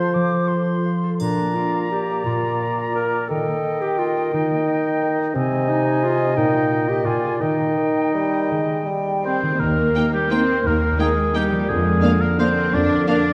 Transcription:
0.00 0.14 F3 soft
0.00 1.03 F3 soft
0.00 0.31 F4 soft
0.00 0.82 F4 soft
0.00 0.48 A4 soft
0.00 1.04 C5 soft
0.00 0.85 F5 soft
0.00 0.16 C6 soft
0.00 0.67 C6 soft
0.14 3.31 F3 soft
0.14 0.49 D6 soft
0.32 3.31 F4 soft
0.48 1.02 A4 soft
0.48 1.19 C6 soft
0.68 1.22 C6 soft
0.86 1.73 F5 soft
1.04 1.22 A4 soft
1.19 2.25 A#2 soft
1.19 3.31 A#2 soft
1.19 1.56 D4 soft
1.19 3.25 D5 soft
1.19 3.25 A#5 soft
1.19 triangle soft
1.37 2.41 A#3 soft
1.55 1.91 F4 medium
1.55 2.08 D5 soft
1.74 2.77 F5 soft
1.91 2.25 G4 medium
1.91 2.95 A#4 soft
2.09 2.59 D5 soft
2.25 3.30 A#2 soft
2.25 2.94 F4 soft
2.42 3.45 A#3 soft
2.60 3.12 D5 soft
2.78 3.31 F5 soft
2.95 3.30 A#4 medium
2.95 3.99 A#4 soft
3.13 3.31 D5 soft
3.29 5.33 D#3 soft
3.29 4.32 D#3 soft
3.29 3.83 A4 medium
3.29 5.31 D#5 soft
3.29 5.11 G5 soft
3.46 4.49 A#3 soft
3.64 4.16 D#5 soft
3.81 4.00 G4 medium
3.81 4.84 G5 soft
3.99 4.32 F4 medium
3.99 5.01 A#4 soft
4.17 4.66 D#5 soft
4.33 5.36 D#3 soft
4.33 5.36 D#4 medium
4.50 5.36 A#3 soft
4.68 5.18 D#5 soft
4.85 5.36 G5 soft
5.02 5.36 A#4 soft
5.19 5.67 D#5 soft
5.34 6.35 C3 medium
5.34 6.39 C3 medium
5.34 5.70 C4 medium
5.34 7.07 D#5 medium
5.34 6.38 G#5 medium
5.51 6.38 G#3 soft
5.68 6.06 D#4 medium
5.68 6.20 D#5 soft
5.86 6.39 G#5 soft
6.04 6.36 F4 medium
6.04 6.39 G#4 soft
6.21 6.70 D#5 soft
6.37 7.05 A#2 medium
6.37 7.43 A#2 medium
6.37 6.90 D#4 medium
6.37 7.07 G5 medium
6.54 7.58 A#3 soft
6.71 7.08 D#5 soft
6.89 7.07 G4 medium
6.89 7.08 G5 soft
7.05 7.42 A#2 soft
7.05 7.42 F4 medium
7.05 7.43 D5 soft
7.05 7.40 G#5 soft
7.24 7.43 G#4 soft
7.24 7.43 D5 soft
7.41 7.73 D#3 soft
7.41 8.50 D#3 soft
7.41 9.24 D#4 medium
7.41 9.07 D#5 soft
7.41 9.38 G5 soft
7.59 8.67 A#3 soft
7.77 8.12 D#3 soft
7.77 8.32 D#5 soft
7.97 9.04 G5 soft
8.14 8.52 G3 soft
8.14 9.23 A#4 soft
8.34 8.86 D#5 soft
8.51 9.41 D#3 soft
8.51 8.87 G#3 soft
8.68 9.46 A#3 soft
8.85 9.42 G3 soft
8.85 9.42 D#5 soft
9.06 11.70 G5 soft
9.24 9.57 C4 soft
9.24 11.59 A#4 soft
9.24 9.62 C5 medium
9.43 11.61 D#3 soft
9.43 9.55 D#5 soft
9.47 11.54 A#3 soft
9.52 11.66 G4 soft
9.56 11.64 D#3 soft
9.56 11.68 D#5 soft
9.60 9.89 D#2 soft
9.60 10.13 A#3 soft
9.60 10.13 A#4 medium
9.60 11.65 A#4 soft
9.95 10.03 A#3 soft
9.95 10.08 A#3 soft
9.95 10.03 D#4 soft
9.95 10.09 D#4 soft
9.95 10.04 G5 soft
10.13 10.31 G3 medium
10.13 10.31 G4 medium
10.30 10.38 A#3 soft
10.30 10.44 A#3 soft
10.30 10.65 C4 medium
10.30 10.39 D#4 soft
10.30 10.44 D#4 soft
10.30 10.69 C5 medium
10.30 10.39 G5 soft
10.66 10.93 D#2 soft
10.66 10.99 A#3 soft
10.66 10.99 A#4 medium
10.99 11.35 G#3 medium
10.99 11.12 A#3 soft
10.99 11.07 A#3 soft
10.99 11.12 D#4 soft
10.99 11.07 D#4 soft
10.99 11.38 G#4 medium
10.99 11.08 G5 soft
11.34 11.68 G3 soft
11.34 11.46 A#3 soft
11.34 11.43 A#3 soft
11.34 11.46 D#4 soft
11.34 11.43 D#4 soft
11.34 11.71 G4 medium
11.34 11.43 G5 soft
11.51 13.33 F3 soft
11.55 13.33 A#3 soft
11.60 13.33 A#4 soft
11.64 13.33 A#4 soft
11.64 13.33 D5 soft
11.69 11.97 F2 medium
11.69 13.33 D3 soft
11.69 12.21 G#3 medium
11.69 12.23 G#4 medium
12.01 12.15 A#3 soft
12.01 12.10 A#3 soft
12.01 12.15 D4 soft
12.01 12.09 D4 soft
12.01 12.10 F5 soft
12.21 12.28 A#3 medium
12.21 12.39 A#4 medium
12.38 12.50 A#3 soft
12.38 12.47 A#3 soft
12.38 12.73 C4 medium
12.38 12.51 D4 soft
12.38 12.47 D4 soft
12.38 12.76 C5 medium
12.38 12.47 F5 soft
12.74 13.02 F2 medium
12.74 13.07 D4 medium
12.74 13.08 D5 medium
13.06 13.20 A#3 soft
13.06 13.16 A#3 soft
13.06 13.19 D4 soft
13.06 13.16 D4 soft
13.06 13.33 D4 medium
13.06 13.33 D5 medium
13.06 13.16 F5 soft

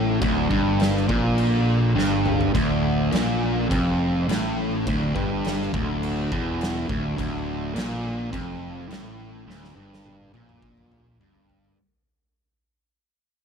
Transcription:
0.00 0.17 A1 medium
0.00 0.21 A2 loud
0.21 0.49 D1 loud
0.21 0.49 D2 loud
0.21 kick loud
0.21 crash medium
0.49 1.05 G1 loud
0.49 1.07 G2 loud
0.49 kick loud
0.80 snare loud
0.80 crash medium
0.97 snare soft
1.08 1.93 A#1 loud
1.08 1.94 A#2 medium
1.08 kick loud
1.38 crash medium
1.95 2.50 G1 medium
1.95 2.53 G2 loud
1.95 snare medium
2.25 mid tom medium
2.41 floor tom loud
2.54 3.09 D1 loud
2.54 3.11 D2 loud
2.54 kick loud
2.54 crash medium
3.12 3.66 A#1 loud
3.12 3.69 A#2 loud
3.12 snare loud
3.12 crash medium
3.69 4.25 F1 loud
3.69 4.27 F2 loud
3.69 kick loud
3.69 crash medium
4.28 4.82 A1 medium
4.28 4.85 A2 loud
4.28 snare loud
4.28 crash medium
4.87 5.14 D1 medium
4.87 5.15 D2 loud
4.87 kick loud
4.87 crash medium
5.15 5.69 G1 medium
5.15 5.72 G2 loud
5.15 kick loud
5.45 snare loud
5.45 crash medium
5.62 snare soft
5.73 6.27 D1 loud
5.73 6.32 D2 loud
5.73 kick loud
6.03 crash medium
6.31 6.85 E1 loud
6.31 6.88 E2 loud
6.31 kick loud
6.61 snare loud
6.61 crash medium
6.89 7.16 D1 loud
6.89 7.16 D2 loud
6.89 kick loud
7.17 7.71 D1 loud
7.17 7.74 D2 loud
7.17 kick loud
7.17 crash medium
7.75 8.29 A#1 loud
7.75 8.31 A#2 loud
7.75 snare loud
7.75 crash medium
8.32 8.87 F1 loud
8.32 8.88 F2 loud
8.32 kick loud
8.32 crash medium
8.89 9.44 A1 medium
8.89 9.46 A2 loud
8.89 crash medium
8.93 snare loud
9.47 9.74 D1 loud
9.47 9.75 D2 loud
9.47 snare medium
9.64 snare medium
9.76 10.30 G1 loud
9.76 10.33 G2 medium
9.94 snare medium
10.05 high tom medium
10.33 11.16 A#1 loud
10.33 11.19 A#2 loud
10.33 high tom loud
10.49 mid tom medium
10.62 kick loud
10.77 mid tom medium
10.92 mid tom loud
11.20 11.74 G1 medium
11.20 11.77 G2 loud
11.20 mid tom loud
11.35 floor tom medium
11.49 floor tom loud
11.64 floor tom loud

